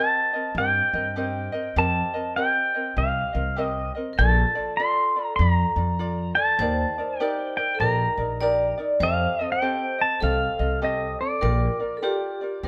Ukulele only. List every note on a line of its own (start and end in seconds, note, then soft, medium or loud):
0.00 0.33 C4 medium
0.00 0.33 G4 medium
0.00 0.34 A#4 medium
0.00 0.32 D#5 medium
0.33 0.56 C4 soft
0.33 0.57 A#4 medium
0.33 0.56 D#5 medium
0.57 0.94 C4 medium
0.57 0.94 G4 medium
0.57 0.93 A#4 medium
0.57 0.92 D#5 medium
0.94 1.15 C4 soft
0.94 1.16 A#4 medium
0.94 1.17 D#5 medium
1.16 1.53 C4 medium
1.16 1.53 G4 medium
1.16 1.52 A#4 medium
1.16 1.51 D#5 medium
1.52 1.77 C4 soft
1.52 1.76 A#4 medium
1.52 1.76 D#5 medium
1.77 2.15 C4 medium
1.77 2.14 G4 medium
1.77 2.13 A#4 medium
1.77 2.12 D#5 medium
2.14 2.36 C4 soft
2.14 2.36 A#4 soft
2.14 2.36 D#5 medium
2.36 2.74 C4 medium
2.36 2.74 G4 medium
2.36 2.75 A#4 medium
2.36 2.73 D#5 medium
2.74 2.96 C4 soft
2.74 2.96 A#4 soft
2.74 2.97 D#5 soft
2.96 3.34 C4 medium
2.96 3.34 G4 medium
2.96 3.33 A#4 medium
2.96 3.32 D#5 medium
3.33 3.56 C4 soft
3.33 3.56 A#4 soft
3.33 3.57 D#5 soft
3.56 3.95 C4 medium
3.56 3.94 G4 medium
3.56 3.95 A#4 medium
3.56 3.94 D#5 medium
3.95 4.19 C4 soft
3.95 4.19 A#4 medium
3.95 4.18 D#5 medium
4.19 4.55 F4 medium
4.19 4.54 A4 medium
4.19 4.54 D5 medium
4.55 4.79 F4 soft
4.55 4.78 A4 medium
4.55 4.78 D5 medium
4.79 5.16 F4 medium
4.79 5.16 A4 medium
4.79 5.15 D5 medium
5.16 5.39 F4 soft
5.16 5.40 A4 soft
5.16 5.39 D5 soft
5.40 5.77 F4 medium
5.40 5.75 D5 medium
5.76 5.98 F4 soft
5.76 5.99 D5 soft
5.99 6.36 F4 medium
5.99 6.35 D5 medium
6.36 6.60 F4 soft
6.36 6.60 A4 medium
6.36 6.60 D5 medium
6.60 6.97 D#4 medium
6.60 6.97 G4 medium
6.60 6.98 A#4 medium
6.60 6.97 D5 medium
6.98 7.20 D#4 soft
6.98 7.19 A#4 medium
6.98 7.20 D5 medium
7.20 7.58 D#4 medium
7.20 7.57 G4 medium
7.20 7.57 A#4 loud
7.20 7.56 D5 loud
7.57 7.80 D#4 soft
7.57 7.80 A#4 soft
7.57 7.80 D5 medium
7.80 8.18 D#4 medium
7.80 8.17 G4 medium
7.80 8.18 A#4 medium
7.80 8.17 D5 medium
8.18 8.40 D#4 soft
8.18 8.41 A#4 soft
8.18 8.41 D5 medium
8.41 8.78 D#4 medium
8.41 8.78 G4 medium
8.41 8.77 A#4 medium
8.41 8.76 D5 loud
8.78 9.02 D#4 medium
8.78 9.01 A#4 medium
8.78 9.01 D5 medium
9.02 9.39 C4 medium
9.02 9.39 G4 medium
9.02 9.39 A4 medium
9.02 9.38 D#5 medium
9.39 9.61 C4 soft
9.39 9.61 A4 medium
9.39 9.61 D#5 medium
9.62 9.99 C4 medium
9.62 9.99 G4 medium
9.62 9.99 A4 medium
9.62 9.97 D#5 medium
9.98 10.21 C4 soft
9.98 10.21 A4 soft
9.98 10.21 D#5 medium
10.21 10.59 C4 medium
10.21 10.59 G4 medium
10.21 10.59 A4 medium
10.21 10.58 D#5 medium
10.59 10.81 C4 soft
10.59 10.81 A4 soft
10.59 10.81 D#5 medium
10.82 11.19 C4 medium
10.82 11.19 G4 medium
10.82 11.19 A4 medium
10.82 11.20 D#5 medium
11.21 11.41 C4 soft
11.21 11.42 A4 medium
11.41 11.79 F4 medium
11.41 11.79 G4 medium
11.41 11.79 A#4 medium
11.41 11.78 D5 medium
11.80 12.01 F4 soft
11.80 12.02 A#4 soft
11.80 12.02 D5 soft
12.02 12.40 F4 loud
12.02 12.40 G4 medium
12.02 12.40 A#4 medium
12.02 12.40 D5 loud
12.41 12.63 F4 soft
12.41 12.64 A#4 soft
12.41 12.64 D5 medium
12.63 12.68 F4 medium
12.63 12.68 G4 medium